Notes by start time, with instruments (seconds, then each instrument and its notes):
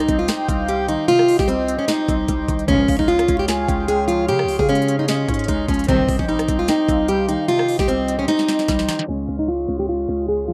Already playing: synth pluck C3 G3, steel-string acoustic guitar D#4, harmonium D#4 G4 C5 G5, soft synth lead D#5
0.08 808-style bass C2, synth pluck C4, kick, closed hi-hat
0.19 steel-string acoustic guitar F4
0.28 steel-string acoustic guitar D#4, soft synth lead G5, cross-stick, snare, closed hi-hat
0.48 808-style bass C2, synth pluck C4, soft synth lead F5, kick, closed hi-hat
0.68 synth pluck G3, steel-string acoustic guitar G4, closed hi-hat
0.88 synth pluck D#3, steel-string acoustic guitar D#4, closed hi-hat
1.08 synth pluck C3, steel-string acoustic guitar F4, closed hi-hat
1.19 cross-stick
1.28 soft synth lead D#5, open hi-hat
1.39 808-style bass C2, steel-string acoustic guitar G4, kick, snare
1.48 synth pluck G3, steel-string acoustic guitar C4, closed hi-hat
1.68 synth pluck C4, closed hi-hat
1.79 steel-string acoustic guitar C#4
1.88 steel-string acoustic guitar D#4, snare, closed hi-hat
2.09 808-style bass C2, synth pluck C4, kick, closed hi-hat
2.28 808-style bass C2, synth pluck G3, kick, closed hi-hat
2.48 808-style bass C2, synth pluck D#3, kick, closed hi-hat
2.59 closed hi-hat
2.68 string section C#2 G#2 F3, 808-style bass C#2, synth pluck C#3, harmonium G#3 C#4 F4 F5, steel-string acoustic guitar C#4, kick, closed hi-hat
2.88 808-style bass C#2, soft synth lead F5, kick, open hi-hat
2.99 steel-string acoustic guitar D#4, kick
3.08 synth pluck G#3, steel-string acoustic guitar F4, closed hi-hat
3.19 cross-stick, closed hi-hat
3.28 808-style bass C#2, synth pluck C#4, kick, closed hi-hat
3.39 steel-string acoustic guitar G4
3.48 steel-string acoustic guitar F4, soft synth lead G#5, cross-stick, snare, closed hi-hat
3.68 808-style bass C#2, synth pluck C#4, soft synth lead G5, kick, closed hi-hat
3.88 synth pluck G#3, steel-string acoustic guitar G#4, closed hi-hat
4.08 synth pluck F3, steel-string acoustic guitar F4, closed hi-hat
4.28 808-style bass C#3, synth pluck C#3, steel-string acoustic guitar G4, closed hi-hat
4.39 cross-stick
4.44 808-style bass C#2
4.48 soft synth lead F5, open hi-hat
4.59 808-style bass C#3, steel-string acoustic guitar G#4, kick
4.69 synth pluck G#3, steel-string acoustic guitar C#4, closed hi-hat
4.75 closed hi-hat
4.82 closed hi-hat
4.88 synth pluck C#4, closed hi-hat
4.99 steel-string acoustic guitar D#4
5.08 steel-string acoustic guitar C#4, soft synth lead D#5, snare, closed hi-hat
5.28 808-style bass G#2, synth pluck C#4, soft synth lead C#5, kick, closed hi-hat
5.34 closed hi-hat
5.39 closed hi-hat
5.44 closed hi-hat
5.48 808-style bass C#2, synth pluck G#3, steel-string acoustic guitar D#4, kick, closed hi-hat
5.68 808-style bass C#2, synth pluck F3, steel-string acoustic guitar C#4, kick, closed hi-hat
5.74 closed hi-hat
5.79 closed hi-hat
5.84 closed hi-hat
5.88 string section C2 G2 D#3, 808-style bass C2, synth pluck C3, steel-string acoustic guitar C4, harmonium D#4 G4 C5 G5, kick, closed hi-hat
6.08 808-style bass C2, soft synth lead D#5, kick, open hi-hat
6.19 808-style bass A#1, steel-string acoustic guitar C#4, kick
6.28 synth pluck G3, steel-string acoustic guitar D#4, closed hi-hat
6.39 cross-stick, closed hi-hat
6.48 808-style bass C2, synth pluck C4, kick, closed hi-hat
6.59 steel-string acoustic guitar F4
6.68 steel-string acoustic guitar D#4, soft synth lead G5, cross-stick, snare, closed hi-hat
6.88 808-style bass C2, synth pluck C4, soft synth lead F5, kick, closed hi-hat
7.08 synth pluck G3, steel-string acoustic guitar G4, closed hi-hat
7.29 synth pluck D#3, steel-string acoustic guitar D#4, closed hi-hat
7.48 synth pluck C3, steel-string acoustic guitar F4, closed hi-hat
7.59 cross-stick
7.68 soft synth lead D#5, open hi-hat
7.79 808-style bass C2, steel-string acoustic guitar G4, kick, snare
7.88 synth pluck G3, steel-string acoustic guitar C4, closed hi-hat
8.08 synth pluck C4, closed hi-hat
8.19 steel-string acoustic guitar C#4
8.28 steel-string acoustic guitar D#4, snare, closed hi-hat
8.39 snare
8.48 synth pluck C4, snare, closed hi-hat
8.59 snare
8.68 808-style bass C2, synth pluck G3, kick, snare, closed hi-hat
8.79 snare
8.88 synth pluck D#3, snare, closed hi-hat
8.99 snare, closed hi-hat
9.08 808-style bass C#2, synth pluck C#3, harmonium G#3 F4 C#5 F5, steel-string acoustic guitar C#4
9.28 808-style bass C#2
9.39 steel-string acoustic guitar D#4
9.48 synth pluck G#3, steel-string acoustic guitar F4
9.68 808-style bass C#2, synth pluck C#4
9.79 steel-string acoustic guitar G4
9.89 steel-string acoustic guitar F4
10.09 808-style bass C#2, synth pluck C#4
10.28 synth pluck G#3, steel-string acoustic guitar G#4, closed hi-hat
10.48 synth pluck F3, steel-string acoustic guitar F4